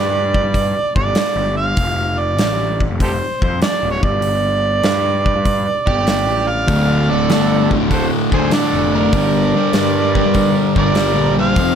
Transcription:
0.00 0.40 G2 medium
0.00 0.95 D5 medium
0.34 kick medium
0.43 0.72 G2 medium
0.54 kick medium
0.54 open hi-hat soft
0.96 1.14 G1 medium
0.96 1.53 D5 medium
0.96 kick medium
1.15 snare loud
1.15 open hi-hat soft
1.36 1.74 G1 medium
1.57 2.20 F5 loud
1.77 2.38 F1 loud
1.77 kick loud
1.77 open hi-hat soft
2.19 2.80 D5 medium
2.38 2.86 A1 medium
2.38 snare loud
2.38 open hi-hat medium
2.80 kick medium
2.90 3.19 F1 medium
3.00 3.12 G4 medium
3.00 3.11 A4 medium
3.00 3.40 C5 medium
3.00 kick medium
3.00 open hi-hat soft
3.42 3.60 F2 medium
3.42 3.61 C5 medium
3.42 kick medium
3.62 3.91 D5 medium
3.62 snare loud
3.62 open hi-hat soft
3.83 4.02 D1 medium
3.91 4.04 C#5 medium
4.03 4.80 G1 medium
4.03 5.87 D5 medium
4.03 kick medium
4.22 open hi-hat soft
4.84 5.32 G2 medium
4.84 snare medium
4.84 open hi-hat soft
5.26 kick medium
5.36 5.64 G2 medium
5.45 kick medium
5.45 open hi-hat soft
5.87 6.27 G1 medium
5.87 6.45 G4 medium
5.87 6.51 D5 medium
5.87 kick medium
6.07 snare loud
6.07 open hi-hat soft
6.27 6.65 A1 medium
6.48 7.10 D5 medium
6.48 7.11 F5 loud
6.67 7.29 D1 medium
6.67 7.09 D2 medium
6.67 7.09 A2 medium
6.67 7.10 D3 medium
6.67 kick loud
6.67 open hi-hat soft
7.10 7.29 D2 medium
7.10 7.29 A2 medium
7.10 7.30 D3 medium
7.10 7.71 A4 medium
7.10 7.71 D5 medium
7.29 7.77 G1 medium
7.29 7.69 D2 medium
7.29 7.69 A2 medium
7.29 7.70 D3 medium
7.29 snare loud
7.29 open hi-hat soft
7.70 7.89 D2 medium
7.70 7.90 A2 medium
7.70 7.90 D3 loud
7.70 kick medium
7.80 8.09 D1 medium
7.90 8.31 D2 medium
7.90 8.31 A2 medium
7.90 8.32 D3 medium
7.90 8.03 A4 medium
7.90 8.09 C5 medium
7.90 kick medium
7.90 open hi-hat soft
8.32 8.50 D2 medium
8.32 8.51 D2 medium
8.32 8.52 A2 medium
8.32 8.52 D3 medium
8.32 8.51 G#4 medium
8.32 8.51 C5 medium
8.32 kick medium
8.51 8.93 D2 medium
8.51 8.93 A2 medium
8.51 8.94 D3 loud
8.51 8.91 A4 medium
8.51 8.91 D5 medium
8.51 snare loud
8.51 open hi-hat medium
8.73 9.10 F1 medium
8.94 9.12 D2 medium
8.94 9.12 A2 medium
8.94 9.13 D3 medium
8.94 10.73 A#4 medium
8.94 10.73 D5 medium
9.13 9.51 G1 medium
9.13 9.54 G2 medium
9.13 9.55 D3 medium
9.13 9.56 G3 medium
9.13 kick loud
9.13 open hi-hat soft
9.55 9.73 G2 medium
9.55 9.74 D3 medium
9.55 9.75 G3 medium
9.73 10.21 G2 medium
9.73 10.14 G2 medium
9.73 10.15 D3 medium
9.73 10.16 G3 loud
9.73 snare loud
9.73 open hi-hat soft
10.15 10.34 G2 loud
10.15 10.35 D3 loud
10.15 10.35 G3 loud
10.15 kick medium
10.25 10.53 G2 medium
10.34 10.75 G2 medium
10.34 10.76 D3 medium
10.34 10.76 G3 medium
10.34 kick medium
10.34 open hi-hat soft
10.76 11.16 G1 medium
10.76 10.95 G2 medium
10.76 10.96 D3 medium
10.76 10.96 G3 medium
10.76 11.35 A#4 medium
10.76 11.34 D5 loud
10.76 kick medium
10.95 11.36 G2 medium
10.95 11.37 D3 medium
10.95 11.37 G3 loud
10.95 snare loud
10.95 open hi-hat soft
11.16 11.54 A#1 medium
11.38 11.56 G2 medium
11.38 11.56 D3 medium
11.38 11.56 G3 medium
11.38 11.75 C5 medium
11.38 11.75 F5 loud
11.56 11.75 F1 medium
11.56 11.75 F2 medium
11.56 11.75 C3 medium
11.56 11.75 F3 medium
11.56 kick loud
11.56 open hi-hat soft

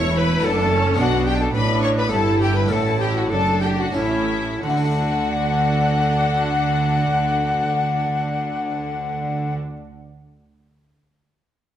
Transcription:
0.00 0.44 E1 medium
0.00 0.40 E2 medium
0.00 0.44 E2 loud
0.00 0.38 A3 medium
0.00 0.39 C#4 medium
0.00 0.40 E4 medium
0.00 0.44 E4 medium
0.00 0.16 C#5 loud
0.00 0.19 C#5 loud
0.00 0.17 C#6 loud
0.16 0.46 B4 loud
0.16 0.44 B4 loud
0.16 0.43 B5 loud
0.39 0.95 A3 medium
0.39 0.94 D4 medium
0.39 0.96 F#4 medium
0.44 0.98 F#1 loud
0.44 0.95 F#2 medium
0.44 0.98 F#2 medium
0.44 0.72 D4 loud
0.44 0.99 A4 loud
0.44 0.99 A5 loud
0.72 0.99 C#4 loud
0.94 2.06 B3 medium
0.94 2.06 D4 medium
0.94 2.07 F#4 medium
0.98 1.53 B1 loud
0.98 1.53 B2 loud
0.98 1.50 B2 medium
0.98 1.54 D4 medium
0.98 1.28 F#4 loud
0.98 1.27 F#4 medium
0.98 1.26 F#5 loud
1.26 1.40 G4 loud
1.26 1.40 G4 medium
1.26 1.40 G5 loud
1.40 1.46 A4 medium
1.40 1.53 A4 medium
1.40 1.54 A5 loud
1.53 2.10 A1 medium
1.53 2.10 A2 loud
1.53 2.08 A2 medium
1.53 2.11 D4 medium
1.53 1.60 B4 medium
1.53 1.82 B4 loud
1.53 1.82 B5 loud
1.82 1.96 C#5 loud
1.82 1.88 C#5 loud
1.82 1.88 C#6 loud
1.96 2.11 B4 loud
1.96 2.04 B4 medium
1.96 2.12 B5 loud
2.07 2.66 B3 medium
2.07 2.67 E4 medium
2.07 2.38 A4 loud
2.11 2.70 G1 medium
2.11 2.70 G2 medium
2.11 2.66 G2 medium
2.11 2.69 E4 medium
2.11 2.40 A4 loud
2.11 2.41 A5 loud
2.39 2.55 G4 medium
2.39 2.55 G4 loud
2.39 2.55 G5 loud
2.54 2.70 B4 loud
2.54 2.62 B4 loud
2.54 2.71 B5 loud
2.66 3.89 A3 medium
2.66 3.90 D4 medium
2.66 3.90 F#4 medium
2.66 2.73 A#4 loud
2.70 3.31 A1 loud
2.70 3.31 A2 medium
2.70 3.27 A2 medium
2.70 3.30 E4 medium
2.70 2.79 A4 loud
2.70 2.99 A4 loud
2.70 3.00 A5 loud
2.99 3.05 G4 loud
2.99 3.16 G4 loud
2.99 3.16 G5 loud
3.13 3.32 F#4 medium
3.13 3.22 F#4 medium
3.13 3.31 F#5 medium
3.30 3.95 F#1 medium
3.30 3.95 F#2 medium
3.30 3.91 F#2 medium
3.30 3.95 D4 medium
3.30 3.63 A4 loud
3.30 3.63 A4 medium
3.30 3.62 A5 loud
3.61 3.78 G4 medium
3.61 3.80 G4 loud
3.61 3.68 G5 loud
3.79 3.85 F#4 medium
3.79 3.96 F#4 medium
3.79 3.95 F#5 loud
3.92 4.61 A1 medium
3.92 4.61 A2 medium
3.92 4.59 A2 medium
3.92 4.60 C#4 medium
3.92 4.38 C#4 medium
3.92 4.61 E4 medium
3.92 4.60 E4 medium
3.92 4.61 E5 loud
3.97 4.64 E4 medium
4.62 9.54 D2 loud
4.62 9.53 D3 medium
4.62 9.56 D3 medium
4.62 9.54 D4 medium
4.62 9.53 F#4 medium
4.62 9.54 F#5 medium
4.62 9.54 F#5 loud
4.70 9.62 A3 medium
4.77 9.70 D4 medium
4.84 9.77 F#4 medium
4.92 9.84 D5 medium

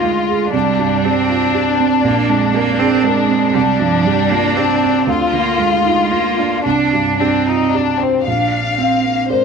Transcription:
0.00 0.49 D2 soft
0.00 0.56 D3 soft
0.00 0.51 G#3 medium
0.00 0.55 D#4 soft
0.00 0.03 F4 soft
0.00 0.49 F4 soft
0.00 0.43 F4 soft
0.28 0.53 G#3 soft
0.52 2.00 C2 soft
0.52 1.06 G3 medium
0.52 3.50 D4 medium
0.79 1.20 G2 soft
1.04 1.79 C4 medium
1.04 1.45 G4 soft
1.29 1.54 F4 soft
1.54 1.94 G4 soft
1.80 2.05 C4 soft
2.04 3.50 A#1 medium
2.04 2.31 A#3 medium
2.29 2.69 F2 soft
2.29 2.56 G#3 medium
2.54 2.81 A#3 medium
2.54 2.94 A#4 soft
2.79 3.05 C4 medium
2.79 3.05 G#4 soft
3.03 3.55 G#3 medium
3.03 3.45 A#4 soft
3.29 3.54 C4 soft
3.53 5.03 C2 medium
3.53 3.81 G3 medium
3.53 5.04 D4 medium
3.79 4.20 G2 soft
3.79 4.06 F3 medium
4.05 4.32 G3 medium
4.05 4.46 G4 soft
4.30 4.58 A#3 medium
4.30 4.57 F4 soft
4.57 5.07 C4 medium
4.57 4.97 G4 soft
4.83 5.08 D4 soft
5.07 6.60 D2 medium
5.07 6.65 F4 medium
5.32 5.74 D3 soft
5.32 5.60 A#3 medium
5.58 6.13 G#3 medium
5.58 5.99 F4 soft
5.85 6.11 D#4 soft
6.11 6.64 A#3 medium
6.11 6.54 F4 soft
6.38 6.65 D4 soft
6.64 8.23 C2 soft
6.64 7.13 D4 soft
6.64 7.21 D4 medium
6.93 7.36 G2 soft
7.19 7.74 C4 medium
7.19 7.45 D4 soft
7.19 7.63 G4 soft
7.47 7.74 D#4 soft
7.47 7.74 F4 soft
7.74 8.01 D4 medium
7.74 8.16 G4 soft
8.00 8.26 C4 soft
8.00 8.27 D4 soft
8.26 9.45 A#1 soft
8.26 8.80 D4 soft
8.26 9.26 F5 soft
8.78 9.45 C4 soft
8.78 9.06 C4 soft
9.04 9.28 A#3 soft
9.29 9.45 G#3 soft
9.29 9.45 A#4 soft
9.29 9.45 C5 soft
9.29 9.45 D5 soft

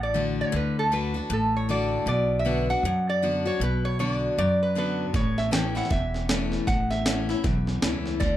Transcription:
0.00 0.42 A1 medium
0.00 0.50 A2 medium
0.00 0.41 D5 medium
0.14 0.51 D3 soft
0.14 0.52 A3 soft
0.14 0.52 D4 medium
0.14 0.52 F#4 medium
0.41 0.55 C#5 medium
0.52 1.19 D2 medium
0.52 0.91 D3 medium
0.56 0.77 B4 medium
0.79 0.94 A4 medium
0.92 1.14 D3 medium
0.92 1.14 A3 medium
0.92 1.14 D4 soft
0.92 1.13 F#4 medium
0.92 1.32 B4 medium
1.14 1.30 D4 soft
1.14 1.29 F#4 medium
1.30 1.95 A1 medium
1.30 2.04 A2 medium
1.30 1.53 A4 medium
1.57 1.70 C#5 medium
1.69 2.06 D3 medium
1.69 2.06 A3 medium
1.69 2.06 D4 medium
1.69 2.06 F#4 medium
1.69 1.98 D5 medium
2.06 2.72 B1 medium
2.06 2.81 B2 medium
2.06 2.36 D5 medium
2.39 2.70 E5 medium
2.45 2.67 D3 medium
2.45 2.68 B3 medium
2.45 2.68 D4 soft
2.45 2.68 F#4 medium
2.70 2.85 D4 soft
2.70 2.84 F#4 medium
2.70 2.84 F#5 medium
2.83 3.49 F#2 medium
2.83 3.58 F#2 medium
2.83 3.08 F#5 medium
3.10 3.47 D5 medium
3.22 3.45 D3 medium
3.22 3.45 B3 medium
3.22 3.45 D4 medium
3.22 3.44 F#4 medium
3.45 3.61 D4 soft
3.45 3.60 F#4 medium
3.45 3.62 C#5 medium
3.60 4.26 B1 medium
3.60 4.35 B2 medium
3.60 3.86 B4 medium
3.85 3.99 C#5 medium
3.99 4.36 D3 medium
3.99 4.36 B3 medium
3.99 4.36 D4 medium
3.99 4.37 F#4 medium
3.99 4.37 D5 medium
4.38 5.03 F#2 medium
4.38 5.12 F#2 medium
4.38 4.60 D5 medium
4.63 4.77 B4 medium
4.75 5.12 D3 soft
4.75 5.13 B3 medium
4.75 5.13 D4 medium
4.75 5.13 F#4 medium
4.75 5.06 B4 medium
5.14 5.79 A1 medium
5.14 5.88 A2 medium
5.14 5.39 C#5 medium
5.14 kick medium
5.14 snare soft
5.38 5.52 E5 medium
5.38 snare soft
5.51 5.74 E3 soft
5.51 5.75 A3 medium
5.51 5.75 C#4 medium
5.51 5.74 E4 medium
5.51 5.76 G5 medium
5.51 snare loud
5.51 hi-hat pedal medium
5.75 5.91 C#4 soft
5.75 5.90 E4 medium
5.75 5.92 F#5 loud
5.75 snare soft
5.84 snare soft
5.90 6.56 E1 medium
5.90 6.65 E2 medium
5.90 6.70 E5 medium
5.90 kick loud
5.90 snare soft
6.14 snare soft
6.29 6.66 E3 soft
6.29 6.67 A3 medium
6.29 6.67 C#4 medium
6.29 6.67 E4 medium
6.29 snare loud
6.29 hi-hat pedal medium
6.52 snare soft
6.67 7.33 A1 medium
6.67 6.89 F#5 medium
6.67 kick medium
6.67 snare soft
6.90 8.02 E5 medium
6.90 snare soft
7.06 7.28 E3 soft
7.06 7.28 A3 medium
7.06 7.29 C#4 medium
7.06 7.28 E4 medium
7.06 snare loud
7.06 hi-hat pedal medium
7.29 7.45 C#4 soft
7.29 7.44 E4 medium
7.29 snare soft
7.44 7.77 B1 medium
7.44 8.18 E2 medium
7.44 kick medium
7.44 snare soft
7.67 snare soft
7.82 8.16 C#2 medium
7.82 8.20 E3 medium
7.82 8.20 A3 soft
7.82 8.20 C#4 medium
7.82 8.21 E4 medium
7.82 snare loud
7.82 hi-hat pedal medium
8.06 snare soft
8.20 8.37 D2 medium
8.20 8.37 D3 medium
8.20 8.37 D5 medium
8.20 kick medium
8.20 snare soft

